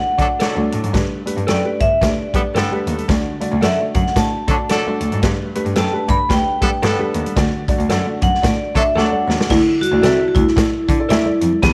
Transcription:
Already playing: upright piano A3 D4 F#4 D5, vibraphone F#5
0.18 cello D3, horn section F#3 D4 A4, upright piano A3 D4 F#4 D5, kick, closed hi-hat
0.40 horn section F#3 D4 A4, clean electric guitar A4 D5 F#5, snare, closed hi-hat
0.55 cello D2, upright piano A3 D4 F#4 D5, high conga
0.72 cello A2, closed hi-hat, muted conga
0.84 cello G#2, closed hi-hat, high conga
0.93 upright piano G2 A3 D4 G4 B4, cello G2, kick, snare, closed hi-hat, low conga
1.26 upright piano A3 D4 G4 B4, closed hi-hat, high conga
1.37 cello G2, closed hi-hat
1.47 cello F#2, clean electric guitar A4 B4 G5, vibraphone D5, snare, closed hi-hat
1.65 upright piano A3 D4 G4 B4
1.80 cello G2, vibraphone E5, kick, closed hi-hat, high conga, low conga
2.02 cello D2, upright piano A3 D4 G4 B4, vibraphone D5, kick, snare, closed hi-hat, muted conga, low conga
2.33 horn section D3 B3 A4, cello G3, upright piano A3 D4 G4 B4, kick, closed hi-hat, muted conga
2.54 cello G2, horn section D3 B3 A4, clean electric guitar A4 B4 G5, snare, closed hi-hat, muted conga
2.71 upright piano A3 D4 G4 B4, high conga
2.87 cello D#2, closed hi-hat, muted conga
2.98 closed hi-hat, high conga
3.09 cello D2, upright piano D3 A3 D4 F#4 D5, kick, snare, closed hi-hat, low conga
3.40 upright piano A3 D4 F#4 D5, closed hi-hat, muted conga, high conga
3.52 cello D2
3.62 cello F#2, clean electric guitar A4 D5 F#5, vibraphone E5, snare, closed hi-hat
3.79 upright piano A3 D4 F#4 D5
3.94 cello F#2, vibraphone F#5, kick, closed hi-hat, high conga, low conga
4.07 snare
4.16 cello A2, upright piano A3 D4 F#4 D5, vibraphone A5, kick, snare, closed hi-hat, muted conga, low conga
4.48 cello D3, horn section F#3 D4 A4, upright piano A3 D4 F#4 D5, kick, closed hi-hat, muted conga
4.69 horn section F#3 D4 A4, clean electric guitar A4 D5 F#5, snare, closed hi-hat, muted conga
4.87 upright piano A3 D4 F#4 D5, high conga
5.01 cello D2, closed hi-hat, muted conga
5.12 cello G#2, closed hi-hat, high conga
5.23 cello G2, upright piano G2 A3 D4 G4 B4, kick, snare, closed hi-hat, muted conga, low conga
5.55 upright piano A3 D4 G4 B4, closed hi-hat, high conga
5.66 cello G2, closed hi-hat
5.76 cello F#2, clean electric guitar A4 B4 G5, vibraphone A5, snare, closed hi-hat
5.93 upright piano A3 D4 G4 B4
6.08 cello G2, vibraphone B5, kick, closed hi-hat, muted conga, high conga, low conga
6.30 cello D2, upright piano A3 D4 G4 B4, vibraphone G5, kick, snare, closed hi-hat, muted conga, low conga
6.61 horn section D3 B3 A4, cello G3, upright piano A3 D4 G4 B4, kick, closed hi-hat, muted conga
6.82 cello G2, horn section D3 B3 A4, clean electric guitar A4 B4 G5, snare, closed hi-hat, muted conga
6.99 upright piano A3 D4 G4 B4, high conga
7.14 cello D#2, closed hi-hat
7.26 closed hi-hat, high conga
7.36 cello D2, upright piano D3 A3 D4 F#4 D5, kick, snare, closed hi-hat, muted conga, low conga
7.68 upright piano A3 D4 F#4 D5, kick, closed hi-hat, muted conga, high conga
7.79 cello D2, closed hi-hat
7.89 cello F#2, clean electric guitar A4 D5 F#5, snare, closed hi-hat
8.06 upright piano A3 D4 F#4 D5
8.22 cello F#2, vibraphone F#5, kick, closed hi-hat, high conga, low conga
8.35 snare
8.42 cello A2, upright piano A3 D4 F#4 D5, vibraphone D5, kick, snare, closed hi-hat, muted conga, low conga
8.75 cello D3, horn section F#3 D4 A4, upright piano A3 D4 F#4 D5, vibraphone E5, kick, closed hi-hat, muted conga
8.95 cello D2, horn section F#3 D4 A4, clean electric guitar A4 D5 F#5, vibraphone F#5, snare, muted conga
9.11 upright piano A3 D4 F#4 D5, high conga
9.28 cello D#2, snare, muted conga
9.40 snare, high conga
9.49 cello D2, upright piano D3 E4 A4 D5, vibraphone E4, kick, snare, crash, muted conga, low conga
9.81 vibraphone F#4, closed hi-hat, muted conga, high conga
9.92 cello D2, upright piano E4 A4 D5
10.02 cello C2, clean electric guitar A4 D5 E5, snare, closed hi-hat, muted conga, high conga
10.19 upright piano E4 A4 E5
10.28 vibraphone F#4
10.35 cello D2, vibraphone E4, kick, closed hi-hat, muted conga, high conga, low conga
10.48 snare
10.56 cello A2, upright piano E4 A4 D5, kick, snare, closed hi-hat
10.88 cello D3, kick, closed hi-hat, muted conga
10.99 upright piano E4 A4 D5
11.09 cello D2, vibraphone E4, clean electric guitar A4 D5 E5, snare, closed hi-hat, muted conga
11.26 upright piano E4 A4 D5, high conga
11.41 cello F2, closed hi-hat
11.53 high conga
11.62 cello E2, upright piano E3 E4 G4 B4, vibraphone B3, kick, snare, closed hi-hat, low conga

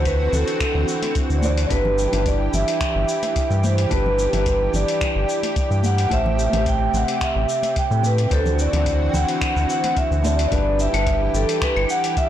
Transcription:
Already playing: analog synth bass D2, nylon-string guitar D3 D4 F#4 C5, analog synth pad E3 C4 F#4
0.05 vibraphone B4, kick, closed hi-hat, cabasa
0.33 analog synth bass D2, vibraphone A4, low conga, cabasa
0.48 closed hi-hat, cabasa
0.60 finger snap, kick, closed hi-hat, cabasa
0.75 analog synth bass D2
0.88 cabasa
1.02 closed hi-hat, high conga, cabasa
1.15 kick, closed hi-hat, cabasa
1.30 analog synth bass D2, cabasa
1.38 nylon-string guitar D3 D4, vibraphone D5
1.42 nylon-string guitar E4 F#4 D5, vibraphone C5, high conga, cabasa
1.57 closed hi-hat, cabasa
1.69 analog synth bass G1, nylon-string guitar G3 D4 E4 B4, analog synth pad G4, vibraphone B4, kick, closed hi-hat, cabasa
1.85 low conga
1.98 cabasa
2.09 nylon-string guitar G3 D4 E4
2.13 analog synth bass G1, nylon-string guitar B4, closed hi-hat, low conga, cabasa
2.26 vibraphone D5, kick, closed hi-hat, cabasa
2.53 analog synth bass G1, vibraphone E5, low conga, cabasa
2.68 closed hi-hat, cabasa
2.81 finger snap, kick, closed hi-hat, cabasa
2.95 analog synth bass G1
3.09 cabasa
3.23 closed hi-hat, high conga, cabasa
3.36 kick, closed hi-hat, cabasa
3.50 analog synth bass G2, cabasa
3.64 vibraphone C5, high conga, cabasa
3.78 closed hi-hat, cabasa
3.89 analog synth bass G1, nylon-string guitar G3 D4 E4 B4, vibraphone B4, kick, closed hi-hat, cabasa
4.06 low conga
4.19 cabasa
4.29 nylon-string guitar G3 D4 E4
4.33 analog synth bass G1, nylon-string guitar B4, closed hi-hat, low conga, cabasa
4.46 kick, closed hi-hat, cabasa
4.73 analog synth bass G1, vibraphone D5, low conga, cabasa
4.88 closed hi-hat, cabasa
5.01 finger snap, kick, closed hi-hat, cabasa
5.16 analog synth bass G1
5.29 cabasa
5.43 closed hi-hat, high conga, cabasa
5.56 kick, closed hi-hat, cabasa
5.71 analog synth bass G2, cabasa
5.84 vibraphone F#5, high conga, cabasa
5.98 closed hi-hat, cabasa
6.09 analog synth bass A1, analog synth pad C3, nylon-string guitar A3 E4 G4 C5, kick, closed hi-hat, cabasa
6.14 vibraphone E5
6.26 low conga
6.39 cabasa
6.49 analog synth bass A1, nylon-string guitar A3 E4 G4, closed hi-hat, low conga
6.54 nylon-string guitar B4 C5, cabasa
6.66 vibraphone G5, kick, closed hi-hat, cabasa
6.93 analog synth bass A1, vibraphone F#5, low conga, cabasa
7.08 closed hi-hat, cabasa
7.21 vibraphone E5, finger snap, kick, closed hi-hat, cabasa
7.36 analog synth bass A1
7.49 cabasa
7.63 closed hi-hat, high conga, cabasa
7.76 vibraphone G5, kick, closed hi-hat, cabasa
7.91 analog synth bass A2, cabasa
8.03 vibraphone B4, high conga, cabasa
8.18 closed hi-hat, cabasa
8.29 analog synth bass D2, nylon-string guitar D3 D4 F#4 C5, analog synth pad E3 C4 F#4, kick, closed hi-hat, cabasa
8.34 vibraphone A4
8.46 low conga, cabasa
8.59 vibraphone D5, cabasa
8.70 analog synth bass D2, nylon-string guitar D3 D4 E4, closed hi-hat, low conga, cabasa
8.76 nylon-string guitar F#4 C5
8.86 kick, closed hi-hat, cabasa
9.09 vibraphone G5
9.14 analog synth bass D2, vibraphone F#5, low conga, cabasa
9.28 closed hi-hat, cabasa
9.41 finger snap, kick, closed hi-hat, cabasa
9.56 analog synth bass D2, cabasa
9.70 vibraphone F#5, cabasa
9.84 closed hi-hat, high conga, cabasa
9.97 vibraphone E5, kick, closed hi-hat, cabasa
10.11 analog synth bass D2, cabasa
10.22 nylon-string guitar D3 D4 F#4 D5, high conga, cabasa
10.39 closed hi-hat, cabasa
10.49 analog synth bass G1, analog synth pad E3 G4, nylon-string guitar G3 D4 E4 B4, vibraphone D5, kick, closed hi-hat, cabasa
10.80 vibraphone E5, cabasa
10.90 analog synth bass G1, nylon-string guitar G3 D4 E4
10.94 nylon-string guitar A4 B4, closed hi-hat, cabasa, claves
11.07 kick, closed hi-hat, cabasa
11.34 analog synth bass G1, vibraphone A4, cabasa
11.49 closed hi-hat, cabasa
11.62 vibraphone B4, finger snap, kick, closed hi-hat, cabasa
11.76 analog synth bass G1, claves
11.90 vibraphone F#5, cabasa
12.04 closed hi-hat, cabasa
12.17 vibraphone E5, kick, closed hi-hat, cabasa

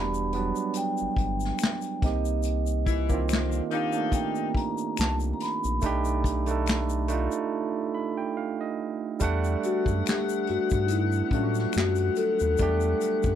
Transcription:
Already playing: analog synth bass E1, tine electric piano G3 B3 D4 F#4 G4, vibraphone B5
0.14 shaker
0.33 tine electric piano G3 B3 D4, closed hi-hat
0.37 tine electric piano F#3
0.56 shaker
0.73 vibraphone G5, closed hi-hat, shaker
0.97 shaker
1.01 analog synth bass G1
1.16 analog synth bass G1, kick, closed hi-hat
1.40 snare, shaker
1.59 finger snap, closed hi-hat, shaker
1.63 snare, clap
1.82 closed hi-hat, shaker
2.02 analog synth bass C2, tine electric piano A#3 C4 D#4, vibraphone D#5, kick, closed hi-hat
2.06 tine electric piano G4, snare
2.25 shaker
2.43 closed hi-hat, shaker
2.67 shaker
2.86 saxophone section E3 E4, kick, closed hi-hat, shaker
3.09 tine electric piano D#3 A#3 C4, kick, shaker
3.14 tine electric piano F4
3.28 saxophone section D3 C4, finger snap, closed hi-hat, shaker
3.33 snare, clap
3.52 shaker
3.71 saxophone section D#3 D#4, tine electric piano A#3 D4 D#4, vibraphone F5, closed hi-hat
3.75 tine electric piano G4
3.93 tine electric piano A#3 D4 D#4, shaker
3.97 tine electric piano A3
4.12 vibraphone G5, kick, closed hi-hat, shaker
4.35 shaker
4.55 vibraphone A#5, kick, closed hi-hat
4.78 shaker
4.97 analog synth bass C2, vibraphone A5, finger snap, snare, closed hi-hat, shaker
5.02 clap
5.20 shaker
5.33 vibraphone A#5
5.40 vibraphone B5, snare, closed hi-hat
5.64 analog synth bass A#1, shaker
5.82 analog synth bass B1, tine electric piano A3 D4 D#4, kick, closed hi-hat, shaker
5.86 tine electric piano G4
6.05 shaker
6.24 kick, closed hi-hat, shaker
6.46 tine electric piano A3 D4 D#4, closed hi-hat, shaker
6.51 tine electric piano A4
6.66 finger snap, snare, closed hi-hat, shaker
6.70 clap
6.89 shaker
7.08 tine electric piano A3 D4 D#4, closed hi-hat, shaker
7.13 tine electric piano F4
7.32 shaker
7.94 tine electric piano B5
8.17 tine electric piano G5
8.37 tine electric piano F5
8.61 tine electric piano D#5
9.20 analog synth bass E2, saxophone section D3 B3 F#5, tine electric piano G3 A3 D4, kick, closed hi-hat, shaker
9.24 tine electric piano F#5
9.44 shaker
9.63 vibraphone F#4, closed hi-hat, shaker
9.86 analog synth bass F#2, kick, shaker
10.05 vibraphone G4, finger snap, snare, closed hi-hat, shaker
10.10 clap
10.29 shaker
10.47 analog synth bass G2, vibraphone F#4, closed hi-hat
10.70 analog synth bass G2, kick, shaker
10.85 vibraphone D#4, closed hi-hat
10.90 vibraphone E4, shaker
11.12 shaker
11.28 vibraphone C#4, kick
11.32 analog synth bass A2, tine electric piano F#3 A3 D4, vibraphone D4, closed hi-hat
11.37 tine electric piano F4
11.43 tine electric piano F#4
11.55 snare, shaker
11.73 analog synth bass F#2, vibraphone F#4, finger snap, closed hi-hat, shaker
11.77 snare, clap
11.96 closed hi-hat, shaker
12.16 vibraphone A4, closed hi-hat, shaker
12.39 analog synth bass D#2, shaker
12.57 analog synth bass E2, tine electric piano G3 A3 D4, kick, closed hi-hat, shaker
12.63 tine electric piano G4
12.81 shaker
13.01 closed hi-hat, shaker
13.23 analog synth bass F#2, kick, shaker

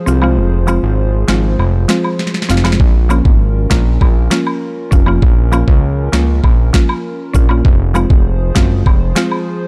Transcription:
Already playing: analog synth pad F3 F4 G#4 C5
0.06 analog synth bass C2, synth pluck C4 F4, cabasa
0.22 synth pluck F3 G#3 C4 F4, high woodblock
0.37 analog synth bass F1
0.67 synth pluck F3 G#3 C4 F4, cabasa, high woodblock
0.83 analog synth bass G#1
1.28 analog synth bass G#1, synth pluck F3 G#3 C4 F4, snare, cabasa
1.59 analog synth bass F1, high woodblock
1.88 synth pluck F3 G#3 C4 F4, snare, cabasa
2.04 high woodblock
2.19 snare
2.27 snare
2.34 snare
2.42 snare
2.49 analog synth bass F1, synth pluck C4 F4, snare, cabasa
2.57 snare
2.64 synth pluck F3 G#3 C4 F4, snare, high woodblock
2.72 snare
2.80 analog synth bass A#1, analog synth pad C#4 A#4, kick
3.09 synth pluck F3 A#3 C#4 F4, cabasa, high woodblock
3.25 analog synth bass G#1, kick
3.70 analog synth bass A#1, synth pluck F3 A#3 C#4 F4, kick, snare, cabasa
4.01 analog synth bass A#1, kick, high woodblock
4.30 synth pluck F3 A#3 C#4 F4, snare, cabasa
4.47 high woodblock
4.91 analog synth bass F1, synth pluck C#4 F4, kick, cabasa
5.06 synth pluck F3 A#3 C#4 F4, high woodblock
5.22 analog synth bass A#1, kick
5.52 synth pluck F3 A#3 C#4 F4, cabasa, high woodblock
5.68 analog synth bass C#2, kick
6.12 analog synth bass C#2, synth pluck F3 A#3 C#4 F4, snare, cabasa
6.44 analog synth bass A#1, kick, high woodblock
6.73 synth pluck F3 A#3 C#4 F4, kick, snare, cabasa
6.89 high woodblock
7.33 analog synth bass A#1, synth pluck C#4 F4, kick, cabasa
7.49 synth pluck F3 A#3 C#4 F4, high woodblock
7.65 analog synth bass F1, analog synth pad F3 F4 G#4 C5, kick
7.94 synth pluck F3 G#3 C4 F4, cabasa, high woodblock
8.10 analog synth bass F1, kick
8.55 analog synth bass F#1, synth pluck F3 G#3 C4 F4, kick, snare, cabasa
8.86 analog synth bass F1, kick, high woodblock
9.15 synth pluck F3 G#3 C4 F4, snare, cabasa
9.31 high woodblock

